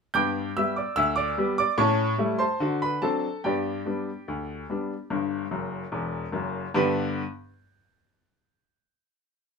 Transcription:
0.14 0.50 G2 medium
0.14 0.39 B3 medium
0.14 0.54 G5 medium
0.14 0.54 D6 medium
0.14 0.47 G6 medium
0.57 0.79 G3 soft
0.57 0.80 B3 soft
0.57 0.80 G4 soft
0.57 0.76 E5 medium
0.57 0.77 E6 medium
0.76 0.97 D5 soft
0.76 0.97 D6 medium
0.96 1.32 D2 medium
0.96 1.17 E5 medium
0.96 1.17 E6 loud
1.16 1.56 D5 medium
1.16 1.49 D6 medium
1.38 1.61 G3 medium
1.38 1.61 B3 medium
1.38 1.61 G4 medium
1.58 1.78 D5 medium
1.58 1.79 D6 medium
1.78 2.13 A2 medium
1.78 2.02 C#4 medium
1.78 2.37 C#5 medium
1.78 2.37 A5 medium
1.78 2.28 C#6 medium
2.18 2.41 G3 soft
2.18 2.42 A3 medium
2.18 2.42 E4 medium
2.38 2.78 C5 medium
2.38 2.78 A5 medium
2.38 2.79 C6 medium
2.60 2.96 D3 medium
2.60 2.85 F#4 medium
2.82 3.02 B4 medium
2.82 3.03 B5 medium
3.02 3.25 F#3 soft
3.02 3.26 C4 medium
3.02 3.26 D4 medium
3.02 3.42 A4 medium
3.02 3.42 A5 medium
3.44 3.80 G2 medium
3.44 3.69 B3 soft
3.44 6.31 G4 soft
3.44 6.31 D5 medium
3.44 5.76 G5 medium
3.86 4.08 G3 soft
3.86 4.09 B3 soft
3.86 4.09 D4 soft
4.28 4.63 D2 medium
4.70 4.92 G3 soft
4.70 4.92 B3 soft
4.70 4.93 D4 soft
5.10 5.43 G1 medium
5.10 5.44 G2 medium
5.51 5.83 F#1 medium
5.51 5.82 F#2 medium
5.92 6.23 E1 medium
5.92 6.24 E2 medium
6.32 6.64 F#1 medium
6.32 6.65 F#2 medium
6.74 7.21 G2 medium
6.74 7.21 D3 medium
6.74 7.21 B3 medium
6.74 7.22 D4 medium
6.74 7.22 G4 medium
6.74 7.22 B4 medium

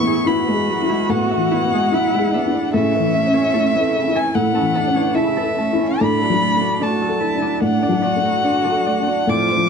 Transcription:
0.00 1.06 A2 medium
0.00 0.16 E3 medium
0.00 0.44 B3 medium
0.00 0.25 E4 medium
0.00 0.28 E4 medium
0.00 0.46 B4 medium
0.00 0.29 C#6 loud
0.06 0.29 E4 medium
0.06 1.72 G#4 medium
0.26 0.50 B3 medium
0.26 0.70 E4 medium
0.26 0.88 E4 medium
0.26 1.94 F#4 medium
0.26 1.12 B5 medium
0.47 0.71 G#3 medium
0.47 2.77 B4 medium
0.54 0.98 G#4 soft
0.69 0.93 F#3 medium
0.82 1.26 E4 soft
0.89 1.11 G#3 medium
0.89 1.50 E4 medium
1.09 2.69 A2 medium
1.09 1.35 B3 medium
1.09 2.74 F#5 medium
1.31 1.55 E4 medium
1.31 1.92 E5 medium
1.37 1.81 E3 soft
1.51 1.76 B3 medium
1.51 2.13 E4 medium
1.65 2.09 B3 soft
1.73 1.96 G#3 medium
1.73 2.77 G#4 medium
1.92 2.16 F#3 medium
1.92 2.35 E4 soft
1.92 2.34 E4 medium
1.92 2.33 E5 medium
2.14 2.36 G#3 medium
2.14 6.04 E4 medium
2.19 2.62 G#4 medium
2.33 2.56 B3 medium
2.33 2.75 D4 medium
2.33 2.93 E5 medium
2.46 2.73 E4 soft
2.55 2.74 E4 medium
2.73 4.31 A2 medium
2.73 2.97 C#3 medium
2.73 4.35 C#4 medium
2.73 3.52 A4 medium
2.73 4.18 E5 loud
2.95 3.16 E3 medium
2.95 3.13 E5 medium
2.99 3.43 E3 medium
3.15 3.36 A3 medium
3.15 3.74 E5 medium
3.27 3.70 C#4 soft
3.34 3.56 C#4 medium
3.34 4.95 C#5 medium
3.54 3.77 A3 medium
3.54 3.97 E4 soft
3.54 4.14 A4 medium
3.75 3.98 E3 medium
3.75 6.04 E5 medium
3.81 4.24 A4 soft
3.96 4.18 C#3 medium
4.08 4.51 E4 soft
4.15 4.35 E3 medium
4.15 4.74 A4 medium
4.15 4.36 G#5 medium
4.35 5.96 A2 medium
4.35 4.57 A3 medium
4.35 4.78 E4 medium
4.35 5.17 F#5 medium
4.55 4.78 C#4 medium
4.55 5.14 A5 medium
4.62 5.05 E3 soft
4.75 4.98 A3 medium
4.75 5.17 D4 medium
4.75 5.35 A4 medium
4.88 5.32 C#4 soft
4.96 5.19 E3 medium
4.96 6.04 C#5 medium
5.15 5.39 C#3 medium
5.15 5.60 E4 medium
5.15 5.58 E4 medium
5.15 6.03 E5 medium
5.15 5.57 A5 medium
5.37 5.60 E3 medium
5.37 6.20 A4 medium
5.43 5.89 A4 soft
5.58 5.82 A3 medium
5.58 6.02 C#4 medium
5.58 9.48 A5 medium
5.73 6.01 E4 medium
5.80 6.00 C#4 soft
6.00 7.58 A2 medium
6.00 6.23 D3 medium
6.00 6.84 D4 medium
6.00 6.80 D4 medium
6.00 6.84 B5 loud
6.21 6.43 F#3 medium
6.21 6.41 A4 soft
6.30 6.72 F#3 medium
6.42 6.64 A3 medium
6.42 7.01 A4 medium
6.56 6.98 A3 soft
6.61 6.83 D4 medium
6.61 8.22 F#4 soft
6.81 7.04 A3 medium
6.81 7.40 D4 medium
6.81 7.24 D4 soft
6.81 7.22 F#4 medium
6.81 7.62 A5 medium
7.02 7.23 F#3 medium
7.02 9.69 A4 medium
7.09 7.51 A4 medium
7.20 7.44 D3 medium
7.20 7.64 E4 medium
7.35 7.78 D4 soft
7.42 7.62 F#3 medium
7.42 8.01 D4 medium
7.61 9.25 A2 medium
7.61 7.84 A3 medium
7.61 8.05 D4 medium
7.61 9.31 F#5 medium
7.82 8.05 D4 soft
7.82 8.44 D5 medium
7.89 8.33 F#3 soft
8.02 8.26 A3 medium
8.02 8.63 D4 medium
8.02 9.29 F#4 medium
8.16 8.60 A3 soft
8.23 8.47 F#3 medium
8.23 9.32 F#4 soft
8.43 8.68 D3 medium
8.43 8.89 D4 soft
8.43 8.85 D5 soft
8.64 8.88 F#3 medium
8.64 9.32 D4 medium
8.72 9.18 A4 soft
8.86 9.10 A3 medium
8.86 9.32 D5 medium
9.00 9.29 D4 soft
9.09 9.29 D4 soft
9.27 9.69 A2 medium
9.27 9.52 F3 medium
9.27 9.69 C4 medium
9.27 9.69 F4 medium
9.27 9.69 D6 medium
9.50 9.69 A3 soft
9.50 9.69 C5 soft
9.56 9.69 F3 soft

